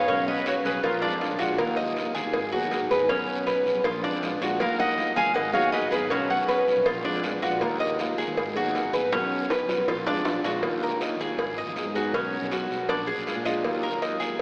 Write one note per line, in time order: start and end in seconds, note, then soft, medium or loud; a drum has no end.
0.00 0.25 C#5 medium
0.00 0.27 F5 loud
0.08 0.62 B1 loud
0.08 0.45 B2 medium
0.08 0.45 F#3 medium
0.08 0.46 B3 medium
0.08 0.45 C#4 medium
0.08 0.46 C#4 medium
0.08 0.46 F#4 medium
0.08 cowbell loud
0.08 long guiro medium
0.28 0.45 B4 medium
0.28 0.45 D#5 medium
0.46 0.83 F#3 medium
0.46 0.84 B3 medium
0.46 0.84 C#4 medium
0.46 0.56 F#4 medium
0.46 0.84 F#4 medium
0.46 0.82 B4 medium
0.46 0.52 C#5 medium
0.46 cowbell medium
0.46 short guiro medium
0.65 0.74 B1 medium
0.65 0.82 G#4 medium
0.65 0.85 B4 medium
0.65 short guiro medium
0.75 0.83 B1 medium
0.83 1.02 A#1 loud
0.83 1.36 F4 medium
0.83 1.02 F4 medium
0.83 1.37 A#4 medium
0.83 muted steel-string acoustic guitar stroke medium
0.83 cowbell loud
0.83 long guiro medium
1.02 1.29 F2 medium
1.02 1.21 G#3 medium
1.02 1.39 D4 medium
1.02 1.21 D4 medium
1.02 1.20 F4 medium
1.21 1.39 F3 medium
1.21 1.40 G#3 medium
1.21 1.40 D4 medium
1.21 1.38 F4 medium
1.21 cowbell medium
1.21 short guiro medium
1.31 1.40 A#1 medium
1.39 1.58 A#1 medium
1.39 1.59 G#3 medium
1.39 1.59 D4 medium
1.39 1.58 F4 medium
1.39 1.58 F#4 medium
1.39 short guiro medium
1.58 2.13 D#2 loud
1.58 1.96 D#3 medium
1.58 1.96 F#3 medium
1.58 1.96 A#3 medium
1.58 1.97 F4 medium
1.58 1.76 A#4 medium
1.58 cowbell loud
1.58 long guiro medium
1.76 2.14 D#5 medium
1.96 2.33 D#3 medium
1.96 2.33 F#3 medium
1.96 2.34 A#3 medium
1.96 2.34 F4 medium
1.96 cowbell medium
1.96 short guiro medium
2.15 2.24 D#2 medium
2.15 2.51 G#4 medium
2.15 short guiro medium
2.25 2.33 D#2 medium
2.34 2.52 G#1 loud
2.34 muted steel-string acoustic guitar stroke medium
2.34 cowbell loud
2.34 long guiro medium
2.52 2.80 D#2 medium
2.52 2.71 F#3 medium
2.52 2.71 B3 medium
2.52 2.71 D#4 medium
2.52 2.89 F#4 medium
2.52 2.71 G#4 medium
2.71 2.90 F#3 medium
2.71 2.90 B3 medium
2.71 2.91 D#4 medium
2.71 2.89 G#4 medium
2.71 cowbell medium
2.71 short guiro medium
2.81 2.90 G#1 medium
2.90 3.09 G#1 medium
2.90 3.09 F#3 medium
2.90 3.09 B3 medium
2.90 3.09 D#4 medium
2.90 3.09 G#4 medium
2.90 3.09 B4 medium
2.90 short guiro medium
3.09 3.63 B1 medium
3.09 3.46 B2 medium
3.09 3.46 F#3 medium
3.09 3.47 B3 medium
3.09 3.46 C#4 medium
3.09 3.47 C#4 medium
3.09 3.47 F#4 medium
3.09 cowbell loud
3.09 long guiro medium
3.47 3.84 F#3 medium
3.47 3.85 B3 medium
3.47 3.85 C#4 medium
3.47 3.85 F#4 medium
3.47 3.83 B4 medium
3.47 cowbell medium
3.47 short guiro medium
3.66 3.75 B1 medium
3.66 short guiro medium
3.75 3.84 B1 loud
3.84 4.03 A#1 loud
3.84 4.03 F4 medium
3.84 muted steel-string acoustic guitar stroke medium
3.84 cowbell loud
3.84 long guiro medium
4.03 4.31 F2 medium
4.03 4.21 G#3 medium
4.03 4.22 D4 medium
4.03 4.40 D4 medium
4.03 4.21 F4 medium
4.22 4.40 F3 medium
4.22 4.41 G#3 medium
4.22 4.41 D4 medium
4.22 4.40 F4 medium
4.22 cowbell medium
4.22 short guiro medium
4.31 4.40 A#1 medium
4.41 4.59 A#1 medium
4.41 4.60 G#3 medium
4.41 4.60 D4 medium
4.41 4.59 F4 medium
4.41 4.60 F#4 medium
4.41 short guiro medium
4.60 5.13 D#2 loud
4.60 4.96 D#3 medium
4.60 4.97 F#3 medium
4.60 4.97 A#3 medium
4.60 4.98 F4 medium
4.60 4.78 A#4 medium
4.60 4.78 F5 loud
4.60 cowbell loud
4.60 long guiro medium
4.79 5.16 D#5 medium
4.79 5.15 D#5 medium
4.79 5.17 F#5 loud
4.97 5.34 D#3 medium
4.97 5.35 F#3 medium
4.97 5.35 A#3 medium
4.97 5.36 F4 medium
4.97 cowbell medium
4.97 short guiro medium
5.16 5.25 D#2 medium
5.16 5.53 G#4 medium
5.16 5.37 F5 medium
5.16 5.34 G#5 loud
5.16 short guiro medium
5.26 5.35 D#2 loud
5.34 5.53 G#1 loud
5.34 5.53 D#5 medium
5.34 5.53 F#5 loud
5.34 muted steel-string acoustic guitar stroke medium
5.34 cowbell loud
5.34 long guiro medium
5.53 5.81 D#2 medium
5.53 5.72 F#3 medium
5.53 5.73 B3 medium
5.53 5.73 D#4 medium
5.53 5.91 F#4 medium
5.53 5.72 G#4 medium
5.53 5.71 C#5 medium
5.53 5.71 F5 loud
5.72 5.91 F#3 medium
5.72 5.92 B3 medium
5.72 5.92 D#4 medium
5.72 5.92 G#4 medium
5.72 5.90 B4 medium
5.72 5.92 D#5 medium
5.72 cowbell medium
5.72 short guiro medium
5.82 5.91 G#1 medium
5.91 6.10 G#1 medium
5.91 6.11 F#3 medium
5.91 6.11 B3 medium
5.91 6.11 D#4 medium
5.91 6.12 G#4 medium
5.91 6.11 G#4 medium
5.91 6.12 B4 medium
5.91 6.10 B4 medium
5.91 short guiro medium
6.10 6.64 B1 loud
6.10 6.48 B2 medium
6.10 6.47 F#3 medium
6.10 6.48 B3 medium
6.10 6.47 C#4 medium
6.10 6.49 C#4 medium
6.10 6.28 F#4 medium
6.10 6.49 F#4 medium
6.10 6.30 C#5 medium
6.10 cowbell loud
6.10 long guiro medium
6.29 6.64 C#5 medium
6.29 6.65 F#5 medium
6.48 6.85 F#3 medium
6.48 6.86 B3 medium
6.48 6.86 C#4 medium
6.48 6.87 F#4 medium
6.48 6.85 B4 medium
6.48 cowbell medium
6.48 short guiro medium
6.67 6.76 B1 medium
6.67 short guiro medium
6.76 6.85 B1 loud
6.86 7.04 A#1 loud
6.86 7.04 F4 medium
6.86 muted steel-string acoustic guitar stroke medium
6.86 cowbell loud
6.86 long guiro medium
7.04 7.32 F2 medium
7.04 7.23 G#3 medium
7.04 7.41 D4 medium
7.04 7.23 D4 medium
7.04 7.23 F4 medium
7.23 7.42 F3 medium
7.23 7.42 G#3 medium
7.23 7.42 D4 medium
7.23 7.41 F4 medium
7.23 cowbell medium
7.23 short guiro medium
7.32 7.42 A#1 medium
7.42 7.61 A#1 medium
7.42 7.62 G#3 medium
7.42 7.61 D4 medium
7.42 7.61 F4 medium
7.42 7.61 F#4 medium
7.42 short guiro medium
7.61 8.15 D#2 loud
7.61 7.97 D#3 medium
7.61 7.98 F#3 medium
7.61 7.99 A#3 medium
7.61 7.99 F4 medium
7.61 7.80 A#4 medium
7.61 cowbell loud
7.61 long guiro medium
7.80 8.17 D#5 medium
7.98 8.36 D#3 medium
7.98 8.36 F#3 medium
7.98 8.37 A#3 medium
7.98 8.37 F4 medium
7.98 cowbell medium
7.98 short guiro medium
8.18 8.27 D#2 medium
8.18 8.55 G#4 medium
8.18 short guiro medium
8.28 8.36 D#2 loud
8.37 8.55 G#1 loud
8.37 muted steel-string acoustic guitar stroke medium
8.37 cowbell loud
8.37 long guiro medium
8.55 8.82 D#2 medium
8.55 8.73 F#3 medium
8.55 8.74 B3 medium
8.55 8.74 D#4 medium
8.55 8.93 F#4 medium
8.55 8.73 G#4 medium
8.75 8.93 F#3 medium
8.75 8.93 B3 medium
8.75 8.93 D#4 medium
8.75 8.92 G#4 medium
8.75 cowbell medium
8.75 short guiro medium
8.83 8.92 G#1 medium
8.93 9.11 G#1 medium
8.93 9.12 F#3 medium
8.93 9.12 B3 medium
8.93 9.12 D#4 medium
8.93 9.11 G#4 medium
8.93 9.12 B4 medium
8.93 short guiro medium
9.12 9.66 B1 loud
9.12 9.49 B2 medium
9.12 9.49 F#3 medium
9.12 9.49 B3 medium
9.12 9.49 C#4 medium
9.12 9.50 C#4 medium
9.12 9.50 F#4 medium
9.12 cowbell loud
9.12 high bongo loud
9.12 long guiro medium
9.50 9.87 F#3 soft
9.50 9.87 B3 medium
9.50 9.88 C#4 medium
9.50 9.88 F#4 medium
9.50 9.87 B4 medium
9.50 cowbell medium
9.50 high bongo loud
9.50 short guiro medium
9.68 9.78 B1 medium
9.68 low bongo medium
9.68 short guiro medium
9.78 9.87 B1 loud
9.87 10.05 A#1 loud
9.87 10.06 F4 medium
9.87 muted steel-string acoustic guitar stroke medium
9.87 cowbell loud
9.87 low bongo medium
9.87 long guiro medium
10.06 10.33 F2 medium
10.06 10.24 G#3 medium
10.06 10.43 D4 medium
10.06 10.25 D4 medium
10.06 10.24 F4 medium
10.06 low bongo loud
10.25 10.43 F3 soft
10.25 10.43 G#3 medium
10.25 10.44 D4 medium
10.25 10.43 F4 medium
10.25 cowbell medium
10.25 low bongo loud
10.25 short guiro medium
10.34 10.43 A#1 medium
10.44 10.62 A#1 medium
10.44 10.63 G#3 medium
10.44 10.63 D4 medium
10.44 10.62 F4 medium
10.44 10.63 F#4 medium
10.44 low bongo medium
10.44 short guiro medium
10.62 10.90 D#2 medium
10.62 11.37 D#3 medium
10.62 11.38 F#3 medium
10.62 11.38 A#3 medium
10.62 11.39 F4 medium
10.62 cowbell loud
10.62 long guiro medium
10.83 11.01 A#4 medium
10.91 11.18 D#2 medium
11.01 11.20 D#5 medium
11.01 cowbell medium
11.01 short guiro medium
11.19 11.39 D#2 medium
11.19 11.57 G#4 medium
11.19 short guiro medium
11.37 11.65 G#1 medium
11.37 muted steel-string acoustic guitar stroke medium
11.37 cowbell loud
11.37 long guiro medium
11.58 11.94 D#5 medium
11.67 11.75 G#1 medium
11.76 11.94 F#3 medium
11.76 11.94 B3 medium
11.76 11.94 D#4 medium
11.76 11.93 G#4 medium
11.76 cowbell medium
11.76 short guiro medium
11.85 12.12 G#2 medium
11.94 12.13 F#3 medium
11.94 12.13 B3 medium
11.94 12.13 D#4 medium
11.94 12.13 F#4 medium
11.94 12.13 G#4 medium
11.94 short guiro medium
12.13 12.40 B1 medium
12.13 12.88 B2 medium
12.13 12.89 F#3 medium
12.13 12.89 B3 medium
12.13 12.50 C#4 medium
12.13 12.89 C#4 medium
12.13 12.90 F#4 medium
12.13 cowbell loud
12.13 long guiro medium
12.42 12.69 B1 loud
12.51 12.88 F#4 medium
12.51 cowbell medium
12.51 short guiro medium
12.71 12.89 B1 medium
12.71 short guiro medium
12.89 13.16 A#1 loud
12.89 13.07 D4 medium
12.89 muted steel-string acoustic guitar stroke medium
12.89 cowbell loud
12.89 long guiro medium
13.07 13.44 G#4 medium
13.18 13.26 A#1 medium
13.26 13.45 F3 medium
13.26 13.45 G#3 medium
13.26 13.45 D4 medium
13.26 13.44 F4 medium
13.26 cowbell medium
13.26 short guiro medium
13.36 13.63 A#2 medium
13.45 13.65 G#3 medium
13.45 13.64 D4 medium
13.45 13.64 F4 medium
13.45 13.82 D#5 medium
13.45 short guiro medium
13.63 13.91 D#2 loud
13.63 14.38 D#3 medium
13.63 14.38 F#3 medium
13.63 14.40 A#3 medium
13.63 14.40 F4 medium
13.63 cowbell loud
13.63 long guiro medium
13.83 14.01 A#4 medium
13.92 14.19 D#2 loud
14.02 14.20 D#5 medium
14.02 cowbell medium
14.02 short guiro medium
14.20 14.42 D#2 medium
14.20 14.42 G#4 medium
14.20 short guiro medium